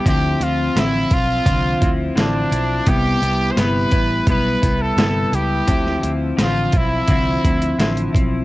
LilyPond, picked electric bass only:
\new Staff \with { instrumentName = "Picked electric bass" } { \clef bass \time 4/4 \key d \dorian \tempo 4 = 85 d,8 d,8 a,,8 b,,8 c,8 d,8 a,,8 b,,8 | c,8 c,8 g,,8 a,,8 b,,8 c,8 g,,8 des,8 | d,8 d,8 a,,8 b,,8 c,8 d,8 a,,8 b,,8 | }